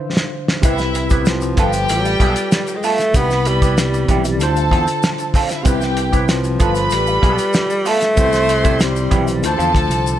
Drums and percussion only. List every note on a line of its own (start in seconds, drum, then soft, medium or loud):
0.17 snare medium
0.48 snare medium
0.63 kick loud
0.63 closed hi-hat medium
0.63 shaker medium
0.78 snare soft
0.78 closed hi-hat soft
0.78 shaker medium
0.95 closed hi-hat medium
0.95 shaker medium
1.10 kick loud
1.10 closed hi-hat medium
1.10 shaker medium
1.25 snare loud
1.25 closed hi-hat loud
1.25 shaker medium
1.41 closed hi-hat soft
1.41 shaker medium
1.57 kick loud
1.57 closed hi-hat medium
1.57 shaker medium
1.73 closed hi-hat medium
1.73 shaker medium
1.89 closed hi-hat loud
1.89 shaker medium
2.05 closed hi-hat soft
2.05 shaker medium
2.20 kick medium
2.20 closed hi-hat medium
2.36 closed hi-hat medium
2.36 shaker medium
2.52 snare loud
2.52 closed hi-hat medium
2.52 shaker medium
2.67 closed hi-hat soft
2.67 shaker medium
2.83 open hi-hat medium
2.83 shaker medium
2.98 snare soft
2.98 closed hi-hat soft
2.98 shaker medium
3.14 kick loud
3.14 closed hi-hat medium
3.14 shaker medium
3.30 snare soft
3.30 shaker medium
3.45 closed hi-hat medium
3.45 shaker medium
3.62 kick medium
3.62 closed hi-hat medium
3.62 shaker medium
3.78 snare loud
3.78 closed hi-hat loud
3.78 shaker medium
3.94 closed hi-hat soft
3.94 shaker medium
4.08 kick medium
4.08 closed hi-hat medium
4.08 shaker medium
4.24 closed hi-hat medium
4.24 shaker medium
4.40 closed hi-hat loud
4.40 shaker medium
4.56 closed hi-hat soft
4.56 shaker soft
4.71 kick medium
4.71 closed hi-hat medium
4.87 closed hi-hat medium
4.87 shaker medium
5.03 snare loud
5.03 closed hi-hat medium
5.03 shaker medium
5.18 closed hi-hat soft
5.18 shaker medium
5.34 kick loud
5.34 open hi-hat medium
5.34 shaker medium
5.49 snare soft
5.49 closed hi-hat medium
5.49 shaker medium
5.65 kick loud
5.65 closed hi-hat medium
5.65 shaker medium
5.81 snare soft
5.81 shaker medium
5.97 closed hi-hat medium
5.97 shaker medium
6.13 kick medium
6.13 closed hi-hat medium
6.13 shaker medium
6.29 snare loud
6.29 closed hi-hat loud
6.29 shaker medium
6.44 closed hi-hat soft
6.44 shaker medium
6.60 kick loud
6.60 closed hi-hat medium
6.60 shaker medium
6.75 closed hi-hat medium
6.75 shaker medium
6.90 closed hi-hat loud
6.90 shaker medium
7.07 shaker medium
7.23 kick medium
7.23 closed hi-hat medium
7.38 closed hi-hat medium
7.38 shaker medium
7.53 snare loud
7.53 closed hi-hat medium
7.53 shaker medium
7.70 closed hi-hat soft
7.70 shaker medium
7.86 open hi-hat medium
7.86 shaker medium
8.01 snare soft
8.01 closed hi-hat medium
8.01 shaker medium
8.17 kick loud
8.17 closed hi-hat medium
8.17 shaker medium
8.33 snare soft
8.33 shaker medium
8.49 closed hi-hat medium
8.49 shaker medium
8.65 kick loud
8.65 closed hi-hat medium
8.65 shaker medium
8.79 snare loud
8.79 closed hi-hat loud
8.79 shaker medium
8.96 shaker medium
9.11 kick medium
9.11 closed hi-hat medium
9.11 shaker soft
9.27 closed hi-hat medium
9.27 shaker medium
9.43 closed hi-hat loud
9.43 shaker medium
9.60 closed hi-hat soft
9.60 shaker medium
9.75 kick medium
9.75 closed hi-hat medium
9.91 closed hi-hat medium
9.91 shaker medium
10.07 shaker medium